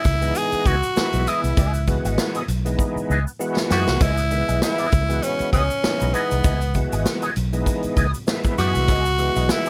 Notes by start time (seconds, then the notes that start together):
Already playing: E4
0.04 C#2, muted clean electric guitar stroke, kick, closed hi-hat, shaker
0.21 E3 G#3 B3 D#4, muted clean electric guitar stroke, closed hi-hat, shaker
0.35 G#4, closed hi-hat, shaker
0.52 muted fingered electric bass stroke, closed hi-hat, shaker
0.66 C#2 B3 E4 F#4 G#4 D#5, kick, closed hi-hat, shaker
0.83 muted clean electric guitar stroke, closed hi-hat, shaker
0.95 E3 G#3 B3 E4, muted clean electric guitar stroke, muted fingered electric bass stroke, snare, shaker
1.13 B1, closed hi-hat, shaker
1.27 B3 E4 G#4 D#5, closed hi-hat, shaker
1.44 C2, muted clean electric guitar stroke, closed hi-hat, shaker
1.57 C#2 B3 E4 G#4 D#5, kick, closed hi-hat, shaker
1.74 muted clean electric guitar stroke, closed hi-hat, shaker
1.87 E3 G#3 B3 F#4, muted clean electric guitar stroke, kick, closed hi-hat, shaker
2.05 G#1 B3 E4 G#4 D#5, closed hi-hat, shaker
2.18 snare, shaker
2.35 B3 E4 G#4 D#5, closed hi-hat, shaker
2.48 B1, muted clean electric guitar stroke, closed hi-hat, shaker
2.65 E3 G#3 B3 D#4, muted clean electric guitar stroke, closed hi-hat, shaker
2.79 kick, shaker
2.96 muted fingered electric bass stroke, shaker
3.10 C#2 B3 E4 G#4 D#5, shaker
3.27 muted clean electric guitar stroke, shaker
3.39 E3 G#3 B3 F#4, muted clean electric guitar stroke, shaker
3.57 snare, shaker
3.70 F#2 B3 E4 F#4 G#4 D#5, snare, shaker
3.87 C2, muted clean electric guitar stroke, snare, shaker
4.01 C#2 B3 E4 G#4 D#5, kick, closed hi-hat, shaker
4.18 muted clean electric guitar stroke, closed hi-hat, shaker
4.31 D#3 G#3 B3 E4, muted clean electric guitar stroke, closed hi-hat, shaker
4.37 E3
4.48 B1 B3 E4 G#4 D#5, closed hi-hat, shaker
4.62 E4, snare, shaker
4.78 B3 E4 G#4 D#5, closed hi-hat, shaker
4.92 C#2, muted clean electric guitar stroke, kick, closed hi-hat, shaker
5.09 E3 G#3 B3 F#4, muted clean electric guitar stroke, closed hi-hat, shaker
5.22 C#4, closed hi-hat, shaker
5.39 muted fingered electric bass stroke, closed hi-hat, shaker
5.53 C#2 B3 C#4 E4 G#4 D#5, kick, closed hi-hat, shaker
5.70 muted clean electric guitar stroke, closed hi-hat, shaker
5.83 D#3 G#3 B3 D#4, muted clean electric guitar stroke, muted fingered electric bass stroke, snare, shaker
5.90 E3
6.00 B1, muted clean electric guitar stroke, closed hi-hat, shaker
6.13 B3 E4 G#4 D#5, closed hi-hat, shaker
6.31 C2, muted clean electric guitar stroke, closed hi-hat, shaker
6.44 C#2 B3 E4 G#4 D#5, kick, closed hi-hat, shaker
6.61 muted clean electric guitar stroke, closed hi-hat, shaker
6.74 E3 G#3 B3 F#4, muted clean electric guitar stroke, kick, closed hi-hat, shaker
6.92 G#1 B3 E4 G#4 D#5, closed hi-hat, shaker
7.05 snare, shaker
7.22 B3 E4 G#4 D#5, closed hi-hat, shaker
7.36 B1, muted clean electric guitar stroke, closed hi-hat, shaker
7.53 E3 G#3 B3 D#4, muted clean electric guitar stroke, closed hi-hat, shaker
7.66 kick, closed hi-hat, shaker
7.83 muted fingered electric bass stroke, closed hi-hat, shaker
7.96 C#2 B3 E4 G#4 D#5, kick, closed hi-hat, shaker
8.14 muted clean electric guitar stroke, closed hi-hat, shaker
8.27 E3 G#3 B3 E4, muted clean electric guitar stroke, snare, shaker
8.43 muted clean electric guitar stroke, kick, closed hi-hat, shaker
8.58 F#2 B3 E4 F#4 G#4 D#5, snare, closed hi-hat, shaker
8.75 C2, muted clean electric guitar stroke, closed hi-hat, shaker
8.88 C#2 B3 E4 G#4 D#5, kick, closed hi-hat, shaker
9.05 muted clean electric guitar stroke, closed hi-hat, shaker
9.18 E3 G#3 B3 F#4, muted clean electric guitar stroke, closed hi-hat, shaker
9.36 B1 B3 E4 G#4 D#5, closed hi-hat, shaker
9.49 E4, snare, shaker
9.66 G#4 D#5, closed hi-hat, shaker